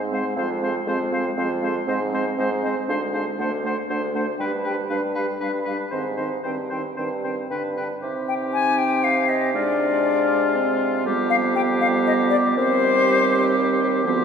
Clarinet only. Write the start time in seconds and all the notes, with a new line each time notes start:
0.11 C4
0.36 C4
0.61 C4
0.87 C4
1.12 C4
1.37 C4
1.62 C4
1.87 C4
2.12 C4
2.37 C4
2.63 C4
2.88 D4
3.13 D4
3.38 D4
3.64 D4
3.89 D4
4.15 D4
4.41 D4
4.65 D4
4.90 D4
5.15 D4
5.40 D4
5.66 D4
5.92 C4
6.18 C4
6.46 C4
6.72 C4
6.98 C4
7.25 C4
7.51 D4
7.77 D4
8.04 D#4
9.54 D4
10.54 C4
11.04 B3
11.56 B3
12.57 C4
14.05 B3